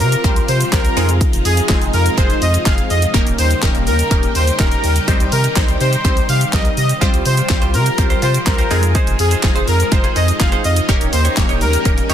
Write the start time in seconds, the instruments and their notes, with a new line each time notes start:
Already playing: string machine C3 F3 G3 F4 G4, synth pluck G3 C4 F4 G4 C5
0.00 sub bass C3, supersaw synth A#4, open hi-hat, shaker
0.12 closed hi-hat, shaker
0.24 sub bass C2, synth pluck G3 C4 F4 G4 C5, kick, closed hi-hat, shaker
0.36 closed hi-hat, shaker
0.48 sub bass C3, supersaw synth C5, open hi-hat, shaker
0.61 closed hi-hat, shaker
0.72 sub bass C2, synth pluck G3 C4 F4 G4 C5, supersaw synth A#4, kick, snare, clap, closed hi-hat, shaker
0.85 closed hi-hat, shaker
0.97 sub bass F2, synth pluck G#3 C4 D#4 F4 G#4, string machine G#3 D#4, open hi-hat, shaker
1.09 closed hi-hat, shaker
1.21 kick, closed hi-hat, shaker
1.33 sub bass F1, closed hi-hat, shaker
1.45 sub bass F2, supersaw synth G#4, open hi-hat, shaker
1.57 closed hi-hat, shaker
1.69 sub bass F1, synth pluck G#3 C4 D#4 F4 G#4, kick, snare, clap, closed hi-hat, shaker
1.81 sub bass F1, closed hi-hat, shaker
1.94 sub bass F2, supersaw synth A#4, open hi-hat, shaker
2.06 closed hi-hat, shaker
2.17 sub bass F1, synth pluck G#3 C4 D#4 F4 G#4, supersaw synth C5, kick, closed hi-hat, shaker
2.30 closed hi-hat, shaker
2.42 sub bass F2, supersaw synth D#5, open hi-hat, shaker
2.54 closed hi-hat, shaker
2.66 sub bass F1, synth pluck G#3 C4 D#4 F4 G#4, supersaw synth F5, kick, snare, clap, closed hi-hat, shaker
2.78 closed hi-hat, shaker
2.90 sub bass F2, supersaw synth D#5, open hi-hat, shaker
3.02 closed hi-hat, shaker
3.14 sub bass D#1, string machine C#3 G3 A#3 D#4 G4, synth pluck A#3 C#4 D#4 G4 A#4, kick, closed hi-hat, shaker
3.27 sub bass D#1, closed hi-hat, shaker
3.38 sub bass D#2, supersaw synth C5, open hi-hat, shaker
3.51 closed hi-hat, shaker
3.62 sub bass D#1, synth pluck A#3 C#4 D#4 G4 A#4, kick, snare, clap, closed hi-hat, shaker
3.75 sub bass D#1, closed hi-hat, shaker
3.87 sub bass D#2, supersaw synth A#4, open hi-hat, shaker
3.99 closed hi-hat, shaker
4.11 sub bass D#1, synth pluck A#3 C#4 D#4 G4 A#4, kick, closed hi-hat, shaker
4.23 closed hi-hat, shaker
4.35 sub bass D#2, supersaw synth C5, open hi-hat, shaker
4.47 closed hi-hat, shaker
4.59 sub bass D#1, synth pluck A#3 C#4 D#4 G4 A#4, supersaw synth A#4, kick, snare, clap, closed hi-hat, shaker
4.72 closed hi-hat, shaker
4.84 sub bass D#2, open hi-hat, shaker
4.96 closed hi-hat, shaker
5.08 sub bass C2, string machine C3 D#3, synth pluck G3 C4 D#4 G4 C5, kick, closed hi-hat, shaker
5.20 sub bass C2, closed hi-hat, shaker
5.32 sub bass C3, supersaw synth A#4, open hi-hat, shaker
5.44 closed hi-hat, shaker
5.56 sub bass C2, synth pluck G3 C4 D#4 G4 C5, kick, snare, clap, closed hi-hat, shaker
5.68 sub bass C2, closed hi-hat, shaker
5.81 sub bass C3, supersaw synth C5, open hi-hat, shaker
5.93 closed hi-hat, shaker
6.04 sub bass C2, synth pluck G3 C4 D#4 G4 C5, supersaw synth C5, kick, closed hi-hat, shaker
6.17 closed hi-hat, shaker
6.29 sub bass C3, supersaw synth F5, open hi-hat, shaker
6.41 closed hi-hat, shaker
6.53 sub bass C2, synth pluck G3 C4 D#4 G4 A#4, supersaw synth D#5, kick, snare, clap, closed hi-hat, shaker
6.65 closed hi-hat, shaker
6.77 sub bass C3, supersaw synth D#5, open hi-hat, shaker
6.89 closed hi-hat, shaker
7.01 sub bass C2, string machine F3 F4 G4, synth pluck G3 C4 F4 G4 C5, clean electric guitar F4 G4 C5, kick, closed hi-hat, shaker
7.14 sub bass C2, closed hi-hat, shaker
7.26 sub bass C3, supersaw synth C5, muted clean electric guitar stroke, open hi-hat, shaker
7.37 clean electric guitar F4 G4 C5, closed hi-hat, shaker
7.49 sub bass C2, synth pluck G3 C4 F4 G4 C5, kick, snare, clap, closed hi-hat, shaker
7.62 sub bass C2, clean electric guitar F4 G4 C5, closed hi-hat, shaker
7.74 sub bass C3, supersaw synth A#4, muted clean electric guitar stroke, open hi-hat, shaker
7.86 muted clean electric guitar stroke, closed hi-hat, shaker
7.98 sub bass C2, synth pluck G3 C4 F4 G4 C5, muted clean electric guitar stroke, kick, closed hi-hat, shaker
8.10 clean electric guitar F4 G4 C5, closed hi-hat, shaker
8.22 sub bass C3, clean electric guitar F4 G4 C5, supersaw synth C5, open hi-hat, shaker
8.34 muted clean electric guitar stroke, closed hi-hat, shaker
8.46 sub bass C2, synth pluck G3 C4 F4 G4 C5, supersaw synth A#4, muted clean electric guitar stroke, kick, snare, clap, closed hi-hat, shaker
8.59 clean electric guitar F4 G4 C5, closed hi-hat, shaker
8.71 sub bass F2, synth pluck G#3 C4 D#4 F4 G#4, string machine G#3 D#4, muted clean electric guitar stroke, open hi-hat, shaker
8.83 muted clean electric guitar stroke, closed hi-hat, shaker
8.95 clean electric guitar D#4 G#4 C5, kick, closed hi-hat, shaker
9.07 sub bass F1, closed hi-hat, shaker
9.19 sub bass F2, supersaw synth G#4, open hi-hat, shaker
9.31 clean electric guitar D#4 G#4 C5, closed hi-hat, shaker
9.43 sub bass F1, synth pluck G#3 C4 D#4 F4 G#4, muted clean electric guitar stroke, kick, snare, clap, closed hi-hat, shaker
9.55 sub bass F1, clean electric guitar D#4 G#4 C5, closed hi-hat, shaker
9.68 sub bass F2, supersaw synth A#4, muted clean electric guitar stroke, open hi-hat, shaker
9.80 muted clean electric guitar stroke, closed hi-hat, shaker
9.91 sub bass F1, synth pluck G#3 C4 D#4 F4 A#4, supersaw synth C5, muted clean electric guitar stroke, kick, closed hi-hat, shaker
10.04 clean electric guitar D#4 G#4 C5, closed hi-hat, shaker
10.16 sub bass F2, clean electric guitar D#4 G#4 C5, supersaw synth D#5, open hi-hat, shaker
10.28 muted clean electric guitar stroke, closed hi-hat, shaker
10.40 sub bass F1, synth pluck G#3 C4 D#4 F4 G#4, supersaw synth F5, muted clean electric guitar stroke, kick, snare, clap, closed hi-hat, shaker
10.52 clean electric guitar D#4 G#4 C5, closed hi-hat, shaker
10.64 sub bass F2, supersaw synth D#5, muted clean electric guitar stroke, open hi-hat, shaker
10.76 muted clean electric guitar stroke, closed hi-hat, shaker
10.89 sub bass D#1, string machine C#3 G3 A#3 G4, synth pluck A#3 C#4 D#4 G4 A#4, clean electric guitar D#4 G4 C#5, kick, closed hi-hat, shaker
11.01 sub bass D#1, closed hi-hat, shaker
11.13 sub bass D#2, supersaw synth C5, muted clean electric guitar stroke, open hi-hat, shaker
11.25 clean electric guitar D#4 G4 C#5, closed hi-hat, shaker
11.37 sub bass D#1, synth pluck A#3 C#4 D#4 G4 C#5, kick, snare, clap, closed hi-hat, shaker
11.49 sub bass D#1, clean electric guitar D#4 G4 C#5, closed hi-hat, shaker
11.61 sub bass D#2, supersaw synth A#4, muted clean electric guitar stroke, open hi-hat, shaker
11.73 muted clean electric guitar stroke, closed hi-hat, shaker
11.85 sub bass D#1, synth pluck A#3 C#4 D#4 G4 A#4, muted clean electric guitar stroke, kick, closed hi-hat, shaker
11.98 muted clean electric guitar stroke, closed hi-hat, shaker
12.09 sub bass D#2, clean electric guitar D#4 G4 C#5, supersaw synth C#5, open hi-hat, shaker